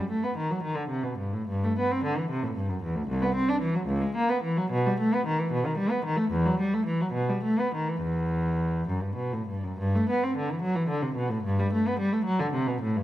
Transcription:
0.10 0.22 A3 soft
0.23 0.36 B3 soft
0.37 0.49 D#3 soft
0.51 0.63 F#3 soft
0.63 0.76 D#3 medium
0.75 0.90 D3 soft
0.89 1.03 C3 soft
1.03 1.18 B2 soft
1.18 1.33 G2 soft
1.34 1.48 A2 medium
1.48 1.62 G2 medium
1.64 1.77 A3 medium
1.79 1.91 B3 medium
1.92 2.04 C4 medium
2.04 2.16 D3 medium
2.17 2.30 E3 soft
2.30 2.42 C3 medium
2.43 2.56 A2 medium
2.56 2.69 G2 medium
2.70 2.82 F#2 soft
2.83 2.95 E2 medium
2.96 3.08 D2 medium
3.08 3.21 C2 medium
3.22 3.35 B3 medium
3.35 3.47 C4 medium
3.49 3.61 D4 medium
3.61 3.74 E3 medium
3.75 3.88 F#3 medium
3.86 4.00 C#2 medium
4.01 4.14 G#3 medium
4.16 4.28 A#3 medium
4.29 4.42 B3 medium
4.43 4.56 E3 medium
4.57 4.71 F#3 medium
4.71 4.84 B2 medium
4.86 4.99 G3 medium
5.00 5.12 A3 medium
5.14 5.26 B3 medium
5.26 5.38 D#3 medium
5.39 5.52 E3 medium
5.52 5.65 B2 medium
5.65 5.78 D#3 medium
5.78 5.91 G3 medium
5.90 6.05 B3 medium
6.05 6.18 D#3 medium
6.17 6.31 A3 medium
6.31 6.45 E2 medium
6.46 6.59 F#3 medium
6.60 6.73 G3 medium
6.74 6.87 A3 medium
6.86 7.00 E3 medium
7.01 7.15 F#3 medium
7.13 7.28 B2 medium
7.29 7.43 G3 medium
7.43 7.58 A3 medium
7.59 7.73 B3 medium
7.75 7.88 D#3 medium
7.89 8.02 E3 medium
8.02 8.87 E2 medium
8.89 9.03 F#2 soft
9.02 9.17 G2 soft
9.16 9.32 B2 soft
9.33 9.49 A2 soft
9.48 9.64 G2 soft
9.64 9.80 F#2 medium
9.78 9.94 G2 medium
9.95 10.09 A3 medium
10.09 10.23 B3 medium
10.23 10.37 C4 medium
10.37 10.50 D3 medium
10.51 10.64 E3 medium
10.62 10.76 F#3 medium
10.75 10.90 E3 medium
10.89 11.03 D3 medium
11.02 11.17 C3 medium
11.16 11.30 B2 medium
11.29 11.44 A2 medium
11.44 11.58 G2 medium
11.60 11.73 G3 medium
11.73 11.86 A3 medium
11.87 12.00 B3 medium
11.99 12.12 G3 medium
12.13 12.26 A3 medium
12.25 12.38 F#3 medium
12.40 12.53 D3 medium
12.54 12.67 C3 medium
12.67 12.81 B2 medium
12.81 12.95 A2 medium
12.97 13.03 G2 medium

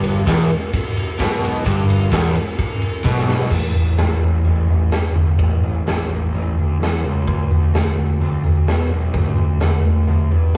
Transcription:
0.00 0.23 G1 loud
0.00 0.26 G2 loud
0.00 ride medium
0.26 0.48 E1 loud
0.26 0.49 E2 loud
0.26 kick loud
0.26 snare loud
0.26 ride loud
0.50 ride medium
0.73 kick loud
0.73 ride loud
0.97 ride medium
1.19 1.63 B1 loud
1.19 1.65 B2 loud
1.19 kick loud
1.19 snare loud
1.19 ride medium
1.45 ride medium
1.65 2.09 G1 loud
1.65 2.11 G2 loud
1.65 kick loud
1.65 ride loud
1.90 ride medium
2.11 2.34 E1 medium
2.11 2.34 E2 loud
2.11 kick loud
2.11 snare loud
2.11 ride loud
2.35 ride medium
2.58 kick loud
2.58 ride loud
2.82 ride medium
3.04 3.49 B1 medium
3.04 3.51 B2 loud
3.04 kick loud
3.04 snare medium
3.18 snare medium
3.29 snare medium
3.41 snare loud
3.50 3.73 A1 loud
3.50 kick loud
3.50 floor tom medium
3.50 crash loud
3.74 3.96 A1 medium
3.74 floor tom medium
3.98 4.20 A1 medium
3.98 snare loud
3.98 floor tom medium
4.21 4.43 A1 medium
4.21 floor tom medium
4.45 4.67 A1 medium
4.45 floor tom medium
4.68 4.90 A1 medium
4.68 floor tom medium
4.91 5.13 G2 loud
4.91 snare loud
4.91 floor tom medium
5.14 5.36 G1 medium
5.14 floor tom medium
5.38 5.81 A1 loud
5.38 kick loud
5.38 floor tom medium
5.63 floor tom medium
5.86 6.07 A1 medium
5.86 snare loud
5.86 floor tom medium
6.10 6.31 A1 medium
6.10 floor tom medium
6.34 6.55 A1 medium
6.34 floor tom medium
6.57 6.78 D2 medium
6.57 floor tom medium
6.80 7.01 E2 medium
6.80 snare loud
6.80 floor tom medium
7.04 7.27 C#2 medium
7.04 floor tom medium
7.27 7.48 D2 loud
7.27 kick loud
7.27 floor tom medium
7.51 7.72 D2 medium
7.51 floor tom medium
7.74 7.95 D2 medium
7.74 snare loud
7.74 floor tom medium
7.98 8.19 D2 medium
7.98 floor tom medium
8.21 8.42 D2 medium
8.21 floor tom medium
8.44 8.65 D2 medium
8.44 floor tom medium
8.67 8.90 B2 medium
8.67 snare loud
8.67 floor tom medium
8.91 9.12 B1 medium
8.91 floor tom medium
9.14 9.57 D2 medium
9.14 kick loud
9.14 floor tom medium
9.37 floor tom medium
9.60 9.83 D2 medium
9.60 snare loud
9.60 floor tom medium
9.84 10.07 D2 medium
9.84 floor tom medium
10.08 10.30 D2 medium
10.08 floor tom medium
10.31 10.52 G2 medium
10.31 floor tom medium
10.54 floor tom medium

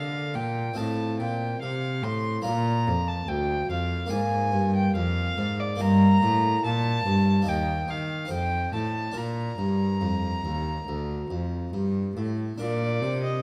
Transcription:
0.00 0.31 D3 soft
0.00 0.37 D3 medium
0.00 0.72 A#3 soft
0.00 0.72 F4 soft
0.00 0.73 D5 soft
0.00 0.36 F5 medium
0.34 0.73 A#2 soft
0.34 0.76 A#2 medium
0.34 0.78 G5 medium
0.74 1.21 A2 medium
0.74 2.39 C4 soft
0.74 2.40 F4 soft
0.74 2.41 D#5 soft
0.74 1.19 A5 medium
0.78 1.16 A2 soft
1.19 1.61 A#2 medium
1.19 1.58 A#2 soft
1.19 1.60 G5 medium
1.61 2.04 C3 soft
1.61 2.00 C3 soft
1.61 2.05 F5 medium
2.03 2.44 A2 medium
2.03 2.41 A2 soft
2.03 2.43 C6 medium
2.42 2.88 A#2 medium
2.42 4.05 A#3 soft
2.42 4.06 F4 soft
2.42 4.08 D5 soft
2.42 3.10 A#5 medium
2.46 2.83 A#2 soft
2.87 3.27 F2 medium
2.87 3.25 F2 medium
3.08 3.30 A5 medium
3.28 3.69 D2 medium
3.28 3.66 D2 soft
3.28 3.70 G5 medium
3.70 4.11 F2 medium
3.70 4.08 F2 soft
3.70 4.11 F5 medium
4.06 5.74 A#3 soft
4.06 5.75 F4 soft
4.06 5.75 D5 soft
4.11 4.49 G#2 soft
4.11 4.55 G#2 medium
4.11 4.73 G#5 medium
4.53 4.91 G2 medium
4.53 4.95 G2 medium
4.76 4.95 G5 medium
4.95 5.37 F2 medium
4.95 5.34 F2 medium
4.95 5.61 F5 loud
5.38 5.80 G#2 medium
5.38 5.77 G#2 medium
5.60 5.82 D5 medium
5.76 7.41 A#3 soft
5.76 7.42 D#4 soft
5.76 7.43 D#5 soft
5.80 6.22 G2 medium
5.80 6.19 G2 medium
5.80 6.65 A#5 loud
6.22 6.61 A2 medium
6.22 6.64 A2 medium
6.64 7.05 A#2 medium
6.64 7.02 A#2 medium
6.64 7.50 A5 loud
7.06 7.47 G2 medium
7.06 7.44 G2 medium
7.42 8.26 A#3 soft
7.42 8.24 D#4 soft
7.42 8.28 D#5 soft
7.47 7.85 D#2 medium
7.47 7.88 D#2 medium
7.47 7.92 G5 medium
7.88 8.27 D#3 medium
7.88 8.31 D#3 medium
7.88 8.32 F5 medium
8.26 9.11 D#4 soft
8.26 9.12 C5 soft
8.30 8.69 F2 medium
8.30 8.73 F2 medium
8.30 8.73 G5 medium
8.73 9.12 A2 soft
8.73 9.15 A2 soft
8.73 9.19 A5 medium
9.12 9.55 A#2 soft
9.12 12.53 D4 soft
9.12 12.54 A#4 soft
9.16 9.58 A#2 medium
9.16 11.74 A#5 medium
9.58 9.98 G2 medium
9.58 10.03 G2 medium
10.01 10.41 F2 soft
10.01 10.44 F2 medium
10.44 10.87 D#2 medium
10.44 10.84 D#2 soft
10.88 11.30 D2 medium
10.88 11.27 D2 soft
11.30 11.69 F2 soft
11.30 11.72 F2 soft
11.73 12.16 G2 medium
11.73 12.13 G2 soft
12.17 12.58 A2 medium
12.17 12.56 A2 soft
12.58 13.03 A#2 medium
12.58 12.99 A#2 soft
12.58 13.42 D4 soft
12.58 13.42 A#4 soft
12.58 13.19 D5 medium
13.01 13.42 C3 medium
13.01 13.40 C3 soft
13.23 13.42 D#5 medium

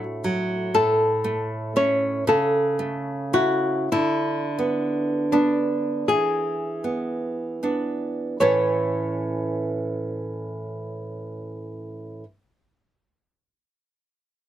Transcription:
0.00 0.70 A2 soft
0.00 0.54 A3 soft
0.00 0.70 F#4 medium
0.24 0.74 F#3 soft
0.74 2.24 A2 soft
0.74 1.72 A4 medium
1.24 1.75 A3 soft
1.76 2.24 A3 soft
1.76 2.24 C#4 soft
1.76 2.24 C#5 medium
2.27 3.88 C#3 soft
2.27 3.30 A4 medium
2.79 3.32 A3 soft
3.33 3.88 A3 soft
3.33 3.88 E4 soft
3.33 3.88 F#4 medium
3.92 6.06 D3 soft
3.92 5.29 E4 soft
4.59 5.31 B3 soft
5.32 6.05 B3 soft
5.32 6.05 D4 soft
5.32 6.06 D4 soft
6.08 8.37 E3 soft
6.08 8.37 G#4 soft
6.84 7.62 B3 soft
7.63 8.37 B3 soft
7.63 8.37 D4 soft
8.40 12.23 A2 soft
8.40 12.23 E3 soft
8.40 12.24 C#4 soft
8.40 12.24 E4 soft
8.40 12.24 A4 soft
8.40 12.23 C#5 soft
8.40 12.24 C#5 soft

